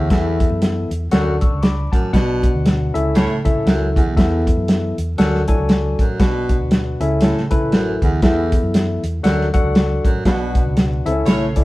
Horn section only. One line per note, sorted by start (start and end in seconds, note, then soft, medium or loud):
3.16 3.35 A3 medium
3.16 3.35 C#4 medium
3.16 3.35 E4 medium
3.16 3.35 C#5 loud
11.26 11.45 A3 medium
11.26 11.45 C#4 loud
11.26 11.45 E4 medium
11.26 11.45 C#5 loud